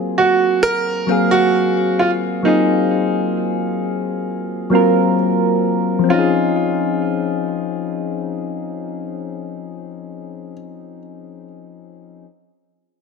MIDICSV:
0, 0, Header, 1, 3, 480
1, 0, Start_track
1, 0, Key_signature, -5, "major"
1, 0, Tempo, 909091
1, 1293, Time_signature, 4, 2, 24, 8
1, 6871, End_track
2, 0, Start_track
2, 0, Title_t, "Grand piano"
2, 0, Program_c, 0, 0
2, 94, Note_on_c, 0, 66, 97
2, 317, Note_off_c, 0, 66, 0
2, 332, Note_on_c, 0, 70, 120
2, 692, Note_on_c, 0, 66, 113
2, 703, Note_off_c, 0, 70, 0
2, 1053, Note_on_c, 0, 65, 97
2, 1063, Note_off_c, 0, 66, 0
2, 1107, Note_off_c, 0, 65, 0
2, 1294, Note_on_c, 0, 63, 86
2, 2712, Note_off_c, 0, 63, 0
2, 3221, Note_on_c, 0, 65, 89
2, 5559, Note_off_c, 0, 65, 0
2, 6871, End_track
3, 0, Start_track
3, 0, Title_t, "Synth keys"
3, 0, Program_c, 1, 88
3, 0, Control_c, 1, 64, 127
3, 0, Note_on_c, 1, 54, 82
3, 0, Note_on_c, 1, 58, 78
3, 0, Note_on_c, 1, 60, 82
3, 0, Note_on_c, 1, 65, 80
3, 0, Note_on_c, 1, 68, 94
3, 563, Note_off_c, 1, 54, 0
3, 563, Note_on_c, 1, 54, 75
3, 569, Note_off_c, 1, 58, 0
3, 569, Note_on_c, 1, 58, 73
3, 576, Note_off_c, 1, 60, 0
3, 576, Note_on_c, 1, 60, 70
3, 583, Note_on_c, 1, 77, 73
3, 589, Note_off_c, 1, 68, 0
3, 589, Note_on_c, 1, 68, 88
3, 1024, Note_off_c, 1, 54, 0
3, 1027, Note_off_c, 1, 58, 0
3, 1031, Note_off_c, 1, 60, 0
3, 1034, Note_off_c, 1, 77, 0
3, 1037, Note_off_c, 1, 68, 0
3, 1281, Note_on_c, 1, 54, 75
3, 1287, Note_on_c, 1, 58, 68
3, 1295, Note_on_c, 1, 60, 71
3, 1301, Note_off_c, 1, 65, 0
3, 1301, Note_on_c, 1, 65, 72
3, 1307, Note_on_c, 1, 68, 88
3, 1895, Note_off_c, 1, 54, 0
3, 1898, Note_off_c, 1, 58, 0
3, 1902, Note_off_c, 1, 60, 0
3, 1905, Note_off_c, 1, 65, 0
3, 1908, Note_off_c, 1, 68, 0
3, 2481, Note_on_c, 1, 54, 92
3, 2488, Note_on_c, 1, 58, 82
3, 2495, Note_on_c, 1, 60, 85
3, 2501, Note_on_c, 1, 65, 84
3, 2508, Note_on_c, 1, 70, 100
3, 2943, Note_off_c, 1, 54, 0
3, 2947, Note_off_c, 1, 58, 0
3, 2950, Note_off_c, 1, 60, 0
3, 2953, Note_off_c, 1, 65, 0
3, 2956, Note_off_c, 1, 70, 0
3, 3163, Note_on_c, 1, 53, 86
3, 3188, Note_on_c, 1, 60, 77
3, 3215, Note_on_c, 1, 61, 76
3, 3220, Control_c, 1, 64, 0
3, 3241, Note_on_c, 1, 63, 76
3, 3267, Note_on_c, 1, 68, 88
3, 3307, Control_c, 1, 64, 127
3, 5500, Note_off_c, 1, 53, 0
3, 5526, Note_off_c, 1, 60, 0
3, 5552, Note_off_c, 1, 61, 0
3, 5579, Note_off_c, 1, 63, 0
3, 5605, Note_off_c, 1, 68, 0
3, 6459, Control_c, 1, 64, 0
3, 6871, End_track
0, 0, End_of_file